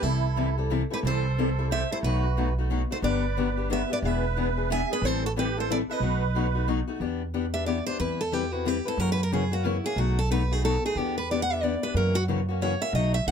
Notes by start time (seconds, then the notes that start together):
0.01 C2 C3 E3 G3 C4 E4 A4
0.36 C3 E3 G3 C4 E4 A4
0.58 G3 C4 E4 A4
0.70 C3 E3 G3 C4 E4 A4
0.90 G3 C4 E4 G4 A4 B4
1.03 C2 C3 E3 G3 C4 E4 A4
1.07 C5
1.38 C3 E3 G3 C4 E4 A4
1.59 G3 C4 E4 A4
1.70 C3 E3 G3 C4 E4 A4 C5 E5
1.91 G3 C4 E4 A4 C5
2.03 B1 B2 F#3 A3 D#4 F#4 B4
2.37 B2 F#3 A3 D#4 F#4
2.58 A3 D#4 F#4
2.70 B2 F#3 A3 D#4 F#4
2.91 A3 D#4 F#4 A4 C5
3.02 G1 D3 F#3 B3 D4 G4 B4 D5
3.37 D3 F#3 B3 D4 G4
3.57 B3 D4 G4
3.70 D3 F#3 B3 D4 G4 B4 E5
3.90 B3 D4 G4 B4 D5
4.02 E1 E3 B3 D4 G#4 B4 E5
4.37 E3 B3 D4 G#4
4.57 B3 D4 G#4
4.70 E3 B3 D4 G#4 E5 G#5
4.90 B3 D4 G#4 B4
5.02 A1 E3 G3 C4 E4 A4 C5
5.24 F#4 A4
5.36 E3 G3 C4 E4 G4 A4 B4
5.57 C4 E4 A4 C5
5.70 E3 G3 C4 E4 A4 D5
5.90 C4 E4 A4 B4 D#5
6.00 B1 B2 F#3 A3 D#4 F#4
6.35 B2 F#3 A3 D#4 F#4
6.55 A3 D#4 F#4
6.67 B2 F#3 A3 D#4 F#4
6.88 A3 D#4 F#4
7.00 E2 E3 B3 D4 G4
7.34 E3 B3 D4 G4
7.54 B3 D4 G4 E5
7.66 E3 B3 D4 G4 D5
7.86 B3 D4 G4 C5
7.99 E2 E3 G3 C4 E4 B4
8.21 A4
8.32 E3 G3 C4 E4 G4 B4
8.52 C4 E4 F#4 B4
8.65 E3 G3 C4 E4 G4 B4
8.85 C4 E4 A4 B4
8.98 F#2 C#3 E3 A#3 C#4 F#4 A#4
9.12 B4
9.23 A#4
9.32 C#3 E3 A#3 C#4 F#4 G#4
9.51 A#3 C#4 F#4
9.64 C#3 E3 A#3 C#4 E4 F#4
9.84 A#3 C#4 F#4 G#4
9.96 B1 B2 F#3 A3 D#4 F#4
10.19 A4
10.31 B2 F#3 A3 D#4 F#4 B4
10.51 A3 D#4 F#4 G#4
10.64 B2 F#3 A3 D#4 F#4 A4
10.84 A3 D#4 F#4 G#4
10.95 E2 E3 B3 D4 G4
11.18 B4
11.31 E3 B3 D4 G4 D5
11.42 F#5
11.50 B3 D4 G4 E5
11.63 E3 B3 D4 G4 D5
11.83 B3 D4 G4 B4
11.94 F#2 C#3 E3 A#3 C#4 F#4 A#4
12.15 F#4
12.28 C#3 E3 A#3 C#4 F#4
12.49 A#3 C#4 F#4
12.61 C#3 E3 A#3 C#4 F#4 C#5
12.81 A#3 C#4 F#4 E5
12.93 B1 B2 F#3 A3 D#4 F#4 D#5
13.14 E5
13.27 C2 F#5